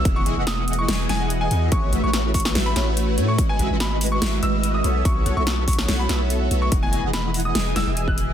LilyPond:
<<
  \new Staff \with { instrumentName = "Grand piano" } { \time 4/4 \key e \major \tempo 4 = 144 r16 cis'''8 r16 dis'''8 r16 cis'''8 r16 gis''8 r16 gis''8 r16 | cis'''8 r16 cis'''8 r16 cis'''8 r16 b''8 r4 cis'''16 | r16 gis''8 r16 b''8 r16 cis'''8 r16 e'''8 r16 dis'''8 r16 | cis'''8 r16 cis'''8 r16 cis'''8 r16 b''8 r4 cis'''16 |
r16 gis''8 r16 b''8 r16 dis'''8 r16 e'''8 r16 fis'''8 r16 | }
  \new Staff \with { instrumentName = "Analog polysynth" } { \time 4/4 \key e \major <e e' gis' dis'' fis''>8 <e e' gis' dis'' gis''>16 <e e' gis' dis'' fis''>4~ <e e' gis' dis'' fis''>16 <e e' gis' dis'' gis''>8 <e e' gis' dis'' fis''>4 <e e' gis' dis'' fis''>8 | <a e' fis' b'>8 <a e' fis' b' e''>16 <a e' fis' b' cis''>4~ <a e' fis' b' cis''>16 <a e' fis' b' e''>8 <a e' fis' b' cis''>4 <a e' fis' b' cis''>8 | fis'8 <gis e' fis' b' e''>16 <gis e' fis' b' dis''>4~ <gis e' fis' b' dis''>16 <gis e' fis' b' e''>8 <gis e' fis' b' dis''>4 <b fis' a' cis'' e''>8 | fis'8 <b fis' a' cis'' fis''>16 <b fis' a' cis'' e''>4~ <b fis' a' cis'' e''>16 <b fis' a' cis'' fis''>8 <b fis' a' cis'' e''>4 <b fis' a' cis'' e''>8 |
<e' gis' dis'' fis''>8 <e e' gis' dis'' gis''>16 <e e' gis' dis'' fis''>4~ <e e' gis' dis'' fis''>16 <e e' gis' dis'' gis''>8 <e e' gis' dis'' fis''>16 <e e' gis' dis'' gis''>4~ <e e' gis' dis'' gis''>16 | }
  \new Staff \with { instrumentName = "Ambient pad" } { \time 4/4 \key e \major <e fis' gis' dis''>1 | <a cis'>1 | r2. r8 <a b e'>8~ | <a b e'>1 |
<e fis' gis' dis''>1 | }
  \new Staff \with { instrumentName = "808-style bass" } { \clef bass \time 4/4 \key e \major r8 e,,16 e,,4~ e,,16 e,,8 e,,4 e,8 | a,,8 a,,16 a,,4~ a,,16 a,,8 a,,4 a,8 | gis,,8 gis,,16 gis,,4~ gis,,16 gis,,8 gis,,4 b,,8 | r8 b,,16 b,,4~ b,,16 b,,8 b,,4 b,,8 |
r8 e,,16 e,,4~ e,,16 e,,8 e,,16 e,,4~ e,,16 | }
  \new DrumStaff \with { instrumentName = "Drums" } \drummode { \time 4/4 <hh bd>8 hh8 <hh sn>8 hh32 hh16. <hh sn>8 <hh sn>8 hh8 hh8 | <hh bd>8 hh8 <hh sn>8 <hho bd>32 hh32 sn16 <hh sn>8 <hh sn>8 hh8 hh8 | <hh bd>8 hh8 <hh sn>8 hho32 hh16. <hh sn>8 hh8 hh8 hh8 | <hh bd>8 hh8 <hh sn>8 <hho bd>32 hh32 sn16 <hh sn>8 <hh sn>8 hh8 hh8 |
<hh bd>8 hh8 <hh sn>8 hho32 hh16. <hh sn>8 <hh sn>8 hh16 bd16 hh8 | }
>>